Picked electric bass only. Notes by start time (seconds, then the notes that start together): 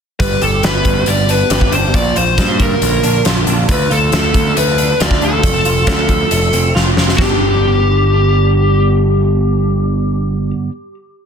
0.20 G1
0.42 G1
0.63 G1
0.85 G1
1.07 G1
1.50 G1
1.72 G1
1.94 A#1
2.16 A#1
2.38 G2
2.82 A#1
3.03 A#1
3.26 A#1
3.47 A#1
3.69 D2
3.91 D2
4.12 D2
4.35 D2
4.57 D2
5.01 D2
5.22 D2
5.44 F1
5.66 F1
5.87 D2
6.31 F1
6.53 F1
6.75 F1
6.97 F1
7.18 G1